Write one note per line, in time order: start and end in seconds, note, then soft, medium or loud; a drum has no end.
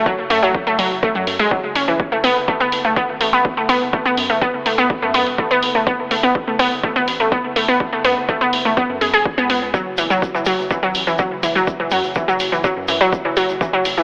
0.06 0.10 F#3 loud
0.06 kick loud
0.18 0.28 F#1 medium
0.30 0.41 F#2 loud
0.30 0.37 A3 loud
0.30 open hi-hat loud
0.43 0.53 F#1 medium
0.43 0.47 F#3 loud
0.55 kick loud
0.67 0.77 F#1 medium
0.67 0.73 A3 loud
0.79 0.89 F#1 medium
0.79 0.83 F#3 loud
0.79 open hi-hat loud
0.91 1.01 F#1 medium
1.03 1.10 A3 loud
1.03 kick loud
1.15 1.25 F#2 medium
1.15 1.19 F#3 medium
1.27 1.38 F#2 medium
1.27 open hi-hat loud
1.39 1.49 E1 medium
1.39 1.49 G#3 loud
1.39 open hi-hat medium
1.51 1.55 F#3 medium
1.51 kick loud
1.64 1.74 F#1 medium
1.75 1.86 F#1 loud
1.75 1.82 C#4 medium
1.75 open hi-hat loud
1.88 1.98 F#1 medium
1.88 1.97 E3 medium
2.00 kick loud
2.12 2.22 F#1 medium
2.12 2.16 A3 medium
2.24 2.34 F#1 medium
2.24 2.28 B3 loud
2.24 open hi-hat loud
2.36 2.46 F#1 medium
2.48 2.52 A3 medium
2.48 kick loud
2.60 2.70 F#1 medium
2.60 2.64 B3 medium
2.72 2.83 F#1 loud
2.72 open hi-hat loud
2.85 2.95 F#1 medium
2.85 2.88 A3 medium
2.96 3.00 B3 loud
2.96 kick loud
3.09 3.19 G#1 medium
3.21 3.31 A1 loud
3.21 3.25 A3 medium
3.21 open hi-hat loud
3.33 3.43 A1 medium
3.33 3.37 B3 loud
3.45 kick loud
3.57 3.67 F#1 medium
3.57 3.61 A3 medium
3.69 3.79 F#1 loud
3.69 3.73 B3 loud
3.69 open hi-hat loud
3.81 3.91 F#1 medium
3.93 3.97 A3 medium
3.93 kick loud
4.05 4.16 F#1 medium
4.05 4.09 B3 loud
4.17 4.28 F#2 loud
4.17 open hi-hat medium
4.30 4.40 F#1 medium
4.30 4.34 A3 medium
4.41 4.46 B3 loud
4.41 kick loud
4.54 4.64 F#1 medium
4.66 4.76 F#1 loud
4.66 4.70 A3 medium
4.66 open hi-hat loud
4.78 4.88 F#1 medium
4.78 4.82 B3 loud
4.90 kick loud
5.02 5.12 F#2 medium
5.02 5.06 A3 medium
5.14 5.25 F#2 loud
5.14 5.18 B3 loud
5.14 open hi-hat loud
5.27 5.37 E1 medium
5.27 open hi-hat medium
5.38 5.42 A3 medium
5.38 kick loud
5.51 5.61 F#1 medium
5.51 5.55 B3 loud
5.63 5.73 F#1 loud
5.63 open hi-hat loud
5.75 5.85 F#1 medium
5.75 5.79 A3 medium
5.87 5.91 B3 loud
5.87 kick loud
5.99 6.09 F#1 medium
6.11 6.21 F#1 loud
6.11 6.15 A3 medium
6.11 open hi-hat loud
6.23 6.33 F#1 medium
6.23 6.27 B3 loud
6.35 kick loud
6.47 6.58 F#1 medium
6.47 6.51 A3 medium
6.59 6.70 F#1 loud
6.59 6.63 B3 loud
6.59 open hi-hat loud
6.72 6.82 F#1 loud
6.83 6.88 A3 medium
6.83 kick loud
6.96 7.06 G#1 medium
6.96 7.00 B3 loud
7.08 7.18 A1 loud
7.08 open hi-hat medium
7.20 7.30 A1 medium
7.20 7.24 A3 medium
7.32 7.36 B3 medium
7.32 kick loud
7.44 7.54 F#1 medium
7.56 7.67 F#1 loud
7.56 7.60 A3 medium
7.56 open hi-hat medium
7.68 7.78 F#1 medium
7.68 7.72 B3 loud
7.80 kick loud
7.93 8.03 F#1 medium
7.93 7.96 A3 medium
8.04 8.15 F#2 loud
8.04 8.09 B3 loud
8.04 open hi-hat loud
8.17 8.27 F#1 medium
8.29 8.33 A3 medium
8.29 kick loud
8.41 8.51 F#1 medium
8.41 8.45 B3 medium
8.53 8.63 F#1 medium
8.53 open hi-hat loud
8.65 8.75 F#1 medium
8.65 8.69 A3 medium
8.77 8.81 B3 loud
8.77 kick loud
8.89 8.99 F#2 medium
9.01 9.12 F#2 loud
9.01 9.08 G#4 medium
9.01 open hi-hat medium
9.14 9.24 E1 medium
9.14 9.23 G#4 medium
9.14 open hi-hat medium
9.25 kick loud
9.38 9.48 C#2 medium
9.38 9.44 B3 loud
9.50 9.60 C#2 loud
9.50 9.60 B3 medium
9.50 open hi-hat loud
9.62 9.72 C#2 medium
9.74 9.78 F#3 loud
9.74 kick loud
9.74 shaker medium
9.86 9.96 F#1 medium
9.98 10.09 F#1 medium
9.98 10.02 E3 medium
9.98 open hi-hat loud
9.98 shaker medium
10.10 10.20 F#1 medium
10.10 10.14 F#3 medium
10.10 shaker soft
10.22 kick loud
10.22 shaker medium
10.35 10.45 F#1 medium
10.35 10.38 E3 medium
10.35 shaker soft
10.45 10.57 F#1 medium
10.45 10.50 F#3 loud
10.45 open hi-hat loud
10.45 shaker loud
10.59 10.69 F#1 medium
10.59 shaker soft
10.70 10.75 E3 medium
10.70 kick loud
10.70 shaker medium
10.83 10.93 G#1 medium
10.83 10.87 F#3 loud
10.95 11.05 A1 loud
10.95 open hi-hat loud
10.95 shaker medium
11.07 11.17 A1 medium
11.07 11.11 E3 medium
11.07 shaker soft
11.19 11.23 F#3 medium
11.19 kick loud
11.19 shaker medium
11.31 11.41 F#1 medium
11.43 11.54 F#1 loud
11.43 11.47 E3 medium
11.43 open hi-hat loud
11.43 shaker medium
11.55 11.66 F#1 medium
11.55 11.59 F#3 medium
11.55 shaker soft
11.67 kick loud
11.67 shaker medium
11.80 11.90 F#1 medium
11.80 11.84 E3 medium
11.91 12.02 F#2 loud
11.91 11.96 F#3 loud
11.91 open hi-hat loud
11.91 shaker loud
12.04 12.14 F#1 medium
12.04 shaker soft
12.15 12.20 E3 medium
12.15 kick loud
12.15 shaker medium
12.28 12.38 F#1 medium
12.28 12.32 F#3 loud
12.28 shaker soft
12.40 12.50 F#1 loud
12.40 open hi-hat loud
12.40 shaker loud
12.52 12.62 F#1 medium
12.52 12.56 E3 medium
12.52 shaker soft
12.64 12.68 F#3 loud
12.64 kick loud
12.64 shaker medium
12.77 12.87 F#2 medium
12.88 12.99 F#2 loud
12.88 12.92 E3 medium
12.88 open hi-hat loud
12.88 shaker medium
13.01 13.11 E1 medium
13.01 13.05 F#3 loud
13.01 open hi-hat medium
13.01 shaker soft
13.13 kick loud
13.13 shaker medium
13.25 13.35 F#1 medium
13.25 13.29 E3 medium
13.37 13.47 F#1 loud
13.37 13.41 F#3 loud
13.37 open hi-hat loud
13.37 shaker loud
13.49 13.59 F#1 medium
13.49 shaker soft
13.61 13.65 E3 medium
13.61 kick loud
13.61 shaker medium
13.73 13.83 F#1 medium
13.73 13.77 F#3 loud
13.85 13.96 F#1 loud
13.85 open hi-hat loud
13.85 shaker loud
13.97 14.03 F#1 medium
13.97 14.01 E3 medium
13.97 shaker soft